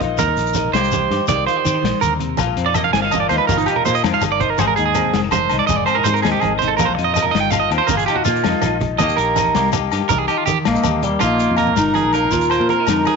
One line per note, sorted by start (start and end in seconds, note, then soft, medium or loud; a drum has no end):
0.00 0.17 A#1 medium
0.00 0.19 D#3 medium
0.00 0.75 A#3 medium
0.00 0.57 D#4 medium
0.00 0.20 F4 medium
0.00 kick medium
0.00 closed hi-hat soft
0.00 low conga medium
0.18 0.36 D#2 loud
0.18 1.28 D#3 medium
0.18 0.70 A#4 medium
0.18 muted clean electric guitar stroke medium
0.18 kick medium
0.18 closed hi-hat medium
0.18 muted conga medium
0.18 high conga medium
0.18 shekere loud
0.28 low conga medium
0.37 0.71 A#1 medium
0.37 muted clean electric guitar stroke medium
0.37 closed hi-hat soft
0.37 shekere soft
0.46 shekere soft
0.54 1.64 D#4 medium
0.54 closed hi-hat soft
0.54 muted conga medium
0.54 high conga medium
0.54 shekere medium
0.65 low conga medium
0.73 1.07 C2 medium
0.73 2.60 A#3 medium
0.73 0.92 G4 medium
0.73 1.25 C5 medium
0.73 snare medium
0.73 closed hi-hat medium
0.73 shekere soft
0.84 low conga soft
0.84 shekere soft
0.92 1.10 G4 medium
0.92 closed hi-hat soft
0.92 muted conga medium
0.92 high conga medium
0.92 low conga medium
0.92 shekere medium
1.11 1.19 G2 medium
1.11 1.29 G4 medium
1.11 snare soft
1.11 closed hi-hat soft
1.11 low conga soft
1.28 1.46 C2 medium
1.28 1.81 D#3 medium
1.28 1.46 G4 medium
1.28 1.46 D5 medium
1.28 kick medium
1.28 closed hi-hat medium
1.28 muted conga medium
1.28 high conga medium
1.28 low conga medium
1.28 shekere medium
1.46 1.56 F4 medium
1.46 1.98 C5 medium
1.46 closed hi-hat medium
1.46 high conga medium
1.56 2.39 G4 medium
1.65 1.82 D#3 medium
1.65 1.74 C4 medium
1.65 closed hi-hat soft
1.65 high conga medium
1.65 shekere medium
1.74 2.39 D#4 soft
1.82 1.92 A#1 medium
1.82 2.01 D#3 medium
1.82 snare medium
1.82 closed hi-hat medium
1.82 high conga medium
2.01 2.36 D#2 medium
2.01 2.19 D3 medium
2.01 2.13 A#4 medium
2.01 closed hi-hat soft
2.01 low conga medium
2.01 shekere medium
2.19 2.38 C3 medium
2.19 closed hi-hat soft
2.19 low conga medium
2.37 2.56 A#1 loud
2.37 2.94 A#2 medium
2.37 3.13 F4 medium
2.37 kick medium
2.37 closed hi-hat medium
2.37 muted conga medium
2.37 high conga medium
2.37 low agogo medium
2.37 shekere medium
2.47 low conga medium
2.57 2.91 F2 medium
2.57 2.68 C4 medium
2.57 closed hi-hat soft
2.66 2.95 D#4 soft
2.66 2.75 D5 medium
2.74 3.87 A#3 medium
2.74 2.84 D#5 medium
2.74 closed hi-hat soft
2.74 muted conga medium
2.74 high conga medium
2.74 low agogo medium
2.74 shekere medium
2.84 2.93 F5 medium
2.84 low conga medium
2.93 3.27 G1 medium
2.93 4.03 D#3 medium
2.93 3.04 C4 medium
2.93 3.02 G#5 loud
2.93 snare medium
2.93 closed hi-hat medium
2.93 low conga soft
3.02 3.31 D#4 soft
3.02 3.12 F5 medium
3.11 3.49 F4 medium
3.11 3.20 D#5 medium
3.11 closed hi-hat soft
3.11 muted conga medium
3.11 high conga medium
3.11 low conga medium
3.11 low agogo medium
3.11 shekere medium
3.20 3.29 D5 medium
3.29 3.39 D#2 medium
3.29 3.70 D#4 medium
3.29 3.38 C5 medium
3.29 snare soft
3.29 closed hi-hat soft
3.29 low agogo medium
3.38 3.47 B4 medium
3.47 3.66 G1 medium
3.47 4.04 A#2 medium
3.47 4.23 F4 medium
3.47 3.57 A#4 medium
3.47 kick medium
3.47 closed hi-hat medium
3.47 muted conga medium
3.47 high conga medium
3.47 low conga medium
3.47 shekere medium
3.57 3.67 D#4 medium
3.57 low conga soft
3.57 shekere soft
3.66 4.05 D#4 medium
3.66 3.76 G4 medium
3.66 closed hi-hat soft
3.66 low agogo medium
3.76 3.85 A#4 medium
3.76 low conga medium
3.85 4.03 A#2 medium
3.85 4.62 A#3 medium
3.85 3.94 C5 medium
3.85 closed hi-hat soft
3.85 muted conga medium
3.85 high conga medium
3.85 shekere medium
3.95 4.04 D#5 medium
3.95 shekere soft
4.04 4.13 F2 medium
4.04 5.12 D#3 medium
4.04 4.13 C4 medium
4.04 muted clean electric guitar stroke loud
4.04 snare medium
4.04 closed hi-hat medium
4.04 low conga soft
4.04 low agogo medium
4.13 4.41 D#4 medium
4.13 4.22 F5 medium
4.13 low conga medium
4.21 4.55 G1 medium
4.21 muted clean electric guitar stroke medium
4.21 closed hi-hat medium
4.21 muted conga medium
4.21 high conga medium
4.21 low conga soft
4.21 low agogo medium
4.21 shekere medium
4.32 4.41 D5 medium
4.40 4.78 D#4 medium
4.40 4.50 C5 medium
4.40 kick medium
4.40 closed hi-hat soft
4.40 low conga medium
4.50 4.59 A#4 medium
4.58 4.76 G#1 loud
4.58 5.68 G#2 medium
4.58 5.33 G#4 medium
4.58 4.67 C5 medium
4.58 kick medium
4.58 closed hi-hat medium
4.58 muted conga medium
4.58 high conga medium
4.58 low agogo medium
4.58 shekere medium
4.67 4.76 A#4 medium
4.67 low conga medium
4.76 5.11 D#2 medium
4.76 5.13 D#4 medium
4.76 4.84 G#4 medium
4.76 closed hi-hat medium
4.86 5.20 G#4 medium
4.95 5.12 C4 medium
4.95 closed hi-hat medium
4.95 muted conga medium
4.95 high conga medium
4.95 low conga soft
4.95 low agogo medium
4.95 shekere medium
5.05 low conga medium
5.13 5.48 F1 medium
5.13 6.23 D#3 medium
5.13 5.24 C4 medium
5.13 snare medium
5.13 closed hi-hat medium
5.13 low conga soft
5.23 5.50 D#4 soft
5.23 low conga soft
5.31 5.58 C5 medium
5.31 muted clean electric guitar stroke medium
5.31 closed hi-hat soft
5.31 muted conga medium
5.31 high conga medium
5.31 low conga medium
5.31 low agogo medium
5.31 shekere medium
5.42 low conga soft
5.49 5.60 C2 medium
5.49 5.87 D#4 medium
5.49 snare soft
5.49 closed hi-hat soft
5.49 low agogo medium
5.59 5.67 D5 medium
5.67 5.86 F1 medium
5.67 6.77 G#2 medium
5.67 6.77 G#4 medium
5.67 5.76 D#5 medium
5.67 kick medium
5.67 closed hi-hat medium
5.67 muted conga medium
5.67 high conga medium
5.67 low conga medium
5.67 shekere medium
5.76 5.86 D5 medium
5.76 low conga soft
5.86 5.97 C4 medium
5.86 5.96 C5 medium
5.86 closed hi-hat soft
5.86 low agogo medium
5.95 6.24 D#4 soft
5.95 6.05 A#4 medium
5.95 low conga medium
6.04 6.23 G#2 medium
6.04 6.78 C4 medium
6.04 6.14 C5 loud
6.04 closed hi-hat soft
6.04 muted conga medium
6.04 high conga medium
6.04 shekere medium
6.14 6.22 A#4 medium
6.14 shekere soft
6.22 6.33 D#2 medium
6.22 7.34 D#3 medium
6.22 6.44 D#4 medium
6.22 6.31 G#4 medium
6.22 snare medium
6.22 closed hi-hat medium
6.22 low agogo medium
6.32 6.41 G4 medium
6.32 low conga medium
6.41 6.76 G#1 medium
6.41 6.62 D#4 medium
6.41 6.52 G#4 medium
6.41 closed hi-hat soft
6.41 muted conga medium
6.41 high conga medium
6.41 low conga soft
6.41 low agogo medium
6.59 6.69 C5 medium
6.59 closed hi-hat soft
6.59 low conga medium
6.63 6.82 D#4 medium
6.68 6.76 A4 medium
6.77 6.96 A#1 loud
6.77 7.34 A#2 medium
6.77 7.53 F4 medium
6.77 6.87 A#4 medium
6.77 kick medium
6.77 closed hi-hat medium
6.77 muted conga medium
6.77 high conga medium
6.77 low agogo medium
6.77 shekere medium
6.85 6.94 C5 medium
6.85 low conga medium
6.95 7.32 F2 medium
6.95 7.35 D#4 medium
6.95 muted clean electric guitar stroke medium
6.95 closed hi-hat soft
7.04 7.13 D#5 medium
7.14 7.24 D#5 loud
7.14 closed hi-hat medium
7.14 muted conga medium
7.14 high conga medium
7.14 low conga soft
7.14 low agogo medium
7.14 shekere medium
7.22 7.33 A#4 medium
7.22 low conga medium
7.31 7.68 G1 medium
7.31 8.45 D#3 medium
7.31 7.40 D#5 medium
7.31 snare medium
7.31 closed hi-hat medium
7.36 7.72 D#4 medium
7.40 7.50 G5 loud
7.40 low conga soft
7.50 7.90 F4 medium
7.50 7.59 F5 medium
7.50 closed hi-hat medium
7.50 muted conga medium
7.50 low conga medium
7.50 low agogo medium
7.50 shekere medium
7.60 7.70 D#5 medium
7.71 7.79 D#2 medium
7.71 7.82 C4 medium
7.71 closed hi-hat soft
7.71 low agogo medium
7.78 8.08 D#4 soft
7.78 7.88 C5 medium
7.87 8.06 G1 medium
7.87 8.45 A#2 medium
7.87 7.97 A#4 medium
7.87 kick medium
7.87 closed hi-hat medium
7.87 muted conga medium
7.87 high conga medium
7.87 low conga medium
7.87 shekere loud
7.92 9.01 F4 medium
7.97 8.06 G#4 medium
7.97 low conga soft
7.97 shekere soft
8.06 8.47 D#4 medium
8.06 8.16 G4 medium
8.06 closed hi-hat medium
8.06 low agogo medium
8.15 8.25 F#4 medium
8.15 low conga medium
8.25 8.44 A#2 medium
8.25 9.00 A#3 medium
8.25 8.77 F4 medium
8.25 closed hi-hat medium
8.25 muted conga medium
8.25 high conga medium
8.25 shekere loud
8.36 shekere soft
8.44 8.53 F2 medium
8.44 8.99 D#3 medium
8.44 8.64 D#4 medium
8.44 snare medium
8.44 closed hi-hat medium
8.44 low conga soft
8.44 low agogo medium
8.52 low conga medium
8.62 8.97 A#1 medium
8.62 9.01 D#4 medium
8.62 closed hi-hat medium
8.62 muted conga medium
8.62 high conga medium
8.62 low conga soft
8.62 low agogo medium
8.62 shekere medium
8.81 kick medium
8.81 closed hi-hat soft
8.81 low conga medium
8.98 9.17 D#2 loud
8.98 10.09 D#3 medium
8.98 9.53 A#3 medium
8.98 9.36 D#4 medium
8.98 9.17 D#5 medium
8.98 kick medium
8.98 closed hi-hat medium
8.98 muted conga medium
8.98 high conga medium
8.98 low agogo medium
8.98 shekere medium
9.02 9.17 G4 medium
9.09 low conga medium
9.09 shekere soft
9.17 9.52 A#1 loud
9.17 9.54 G4 medium
9.17 9.69 A#4 medium
9.17 closed hi-hat soft
9.17 shekere soft
9.36 10.29 D#4 medium
9.36 closed hi-hat medium
9.36 muted conga medium
9.36 high conga loud
9.36 low conga soft
9.36 low agogo medium
9.36 shekere medium
9.45 low conga medium
9.54 9.89 C2 medium
9.54 10.65 A#3 medium
9.54 9.72 G4 medium
9.54 snare medium
9.54 closed hi-hat medium
9.54 shekere soft
9.73 9.92 G4 medium
9.73 closed hi-hat soft
9.73 muted conga medium
9.73 high conga medium
9.73 low conga loud
9.73 low agogo medium
9.73 shekere medium
9.92 10.01 G2 medium
9.92 10.09 G4 medium
9.92 snare soft
9.92 closed hi-hat soft
9.92 low agogo medium
9.92 shekere soft
10.01 low conga soft
10.09 10.27 C2 medium
10.09 11.21 D#3 medium
10.09 10.66 G4 medium
10.09 10.18 A#4 medium
10.09 kick medium
10.09 closed hi-hat medium
10.09 muted conga medium
10.09 high conga medium
10.09 low conga loud
10.09 shekere loud
10.18 10.28 G#4 medium
10.28 10.48 D#4 medium
10.28 10.38 G4 loud
10.28 closed hi-hat soft
10.28 low agogo medium
10.38 10.45 F4 medium
10.46 10.65 D#3 medium
10.46 10.57 G4 loud
10.46 closed hi-hat soft
10.46 muted conga medium
10.46 high conga medium
10.46 shekere loud
10.65 10.75 A#1 medium
10.65 11.19 A#3 medium
10.65 11.04 A#3 medium
10.65 snare medium
10.65 closed hi-hat medium
10.65 low agogo medium
10.71 11.06 D#4 medium
10.75 low conga medium
10.75 shekere soft
10.84 11.19 D#2 medium
10.84 11.03 G4 medium
10.84 closed hi-hat medium
10.84 muted conga medium
10.84 high conga medium
10.84 low agogo medium
10.84 shekere medium
11.02 11.21 G3 medium
11.02 11.22 A#3 medium
11.02 11.20 G4 medium
11.02 closed hi-hat soft
11.02 low conga medium
11.02 shekere soft
11.20 11.47 A#1 medium
11.20 11.95 A#2 medium
11.20 11.96 D#3 medium
11.20 11.73 A#3 medium
11.20 11.40 A#3 medium
11.20 11.74 D#4 medium
11.20 11.56 F4 medium
11.20 kick medium
11.20 closed hi-hat medium
11.20 muted conga medium
11.20 high conga medium
11.20 low agogo medium
11.20 shekere medium
11.24 11.58 D#4 medium
11.24 13.16 F4 medium
11.39 11.77 A#3 medium
11.39 closed hi-hat soft
11.39 shekere soft
11.50 11.75 F2 medium
11.57 12.69 D#4 soft
11.57 11.93 A#4 medium
11.57 closed hi-hat soft
11.57 high conga medium
11.57 low agogo medium
11.67 muted conga medium
11.67 low conga medium
11.76 12.02 G1 medium
11.76 12.34 D#4 medium
11.76 muted clean electric guitar stroke medium
11.76 snare medium
11.76 closed hi-hat medium
11.76 shekere medium
11.81 12.39 A#4 medium
11.94 12.13 G#4 medium
11.94 closed hi-hat soft
11.94 high conga medium
11.94 low agogo medium
12.05 12.30 A#1 medium
12.13 12.50 A#3 medium
12.13 12.49 A#4 medium
12.13 closed hi-hat soft
12.13 muted conga medium
12.13 low agogo medium
12.13 shekere soft
12.24 low conga medium
12.31 12.58 D#2 medium
12.31 12.87 A#2 medium
12.31 12.88 F4 loud
12.31 kick medium
12.31 closed hi-hat medium
12.31 high conga medium
12.31 shekere medium
12.39 12.91 A#4 medium
12.39 shekere soft
12.50 13.16 A#3 medium
12.50 12.68 C5 medium
12.50 closed hi-hat soft
12.50 low agogo medium
12.60 12.85 A#2 medium
12.60 muted conga medium
12.69 12.80 C4 medium
12.69 13.05 A#4 medium
12.69 closed hi-hat soft
12.69 high conga medium
12.80 13.16 D#4 soft
12.87 13.05 F2 medium
12.87 13.07 D3 medium
12.87 13.16 D#4 medium
12.87 snare medium
12.87 closed hi-hat medium
12.87 low agogo medium
12.87 shekere medium
12.92 13.16 A#4 medium
13.05 13.16 G#4 medium
13.05 closed hi-hat soft
13.05 muted conga medium
13.05 high conga medium
13.05 low agogo medium